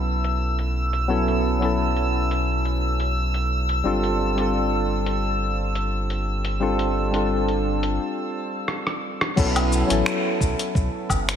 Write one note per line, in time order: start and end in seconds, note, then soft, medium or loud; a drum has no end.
0.00 3.82 B1 medium
0.00 1.08 F#3 medium
0.00 1.08 B3 medium
0.00 1.09 C#4 medium
0.00 1.10 E4 medium
0.00 1.10 A4 medium
0.00 7.99 E6 medium
0.24 closed hi-hat soft
0.59 closed hi-hat soft
0.93 closed hi-hat soft
1.08 1.57 F#3 medium
1.08 1.57 B3 medium
1.08 1.58 C#4 medium
1.08 1.58 E4 medium
1.08 1.58 A4 medium
1.28 closed hi-hat soft
1.59 3.80 F#3 medium
1.59 3.81 B3 medium
1.59 3.81 C#4 medium
1.59 closed hi-hat soft
1.64 3.82 E4 medium
1.64 3.83 A4 medium
1.97 closed hi-hat soft
2.31 closed hi-hat soft
2.65 closed hi-hat soft
3.00 closed hi-hat soft
3.34 closed hi-hat soft
3.69 closed hi-hat soft
3.84 7.99 G1 medium
3.84 4.33 G3 medium
3.84 4.34 C4 medium
3.84 4.34 D4 medium
3.84 4.34 F4 medium
3.84 4.34 A4 medium
4.04 closed hi-hat soft
4.35 6.56 G3 medium
4.35 6.57 C4 medium
4.35 6.57 D4 medium
4.35 closed hi-hat soft
4.40 6.58 F4 medium
4.40 6.59 A4 medium
5.06 closed hi-hat soft
5.75 closed hi-hat soft
6.10 closed hi-hat soft
6.45 closed hi-hat soft
6.60 7.09 G3 medium
6.60 7.09 C4 medium
6.60 7.10 D4 medium
6.60 7.10 F4 medium
6.60 7.11 A4 medium
6.79 closed hi-hat soft
7.10 9.31 G3 medium
7.10 9.32 C4 medium
7.10 9.33 D4 medium
7.10 closed hi-hat soft
7.15 9.34 F4 medium
7.15 9.34 A4 medium
7.48 closed hi-hat soft
7.83 closed hi-hat soft
8.68 cross-stick soft
8.87 cross-stick medium
9.21 cross-stick medium
9.36 9.83 B1 loud
9.36 9.85 F#3 medium
9.36 9.85 B3 medium
9.36 9.86 C#4 medium
9.36 9.86 E4 medium
9.36 9.87 A4 loud
9.36 kick loud
9.36 crash loud
9.36 shaker soft
9.56 closed hi-hat soft
9.56 low woodblock medium
9.73 shaker medium
9.87 10.02 A1 medium
9.87 11.36 F#3 medium
9.87 11.36 B3 medium
9.87 11.36 C#4 medium
9.87 closed hi-hat medium
9.91 11.36 E4 medium
9.91 11.36 A4 medium
9.91 shaker soft
10.06 finger snap medium
10.06 shaker soft
10.41 10.55 B1 medium
10.41 kick loud
10.41 shaker medium
10.59 closed hi-hat medium
10.59 shaker soft
10.75 10.89 B1 medium
10.75 kick loud
10.75 shaker soft
11.09 11.36 F#1 medium
11.09 kick medium
11.09 low woodblock medium
11.09 shaker medium
11.29 finger snap medium
11.29 closed hi-hat medium
11.29 shaker soft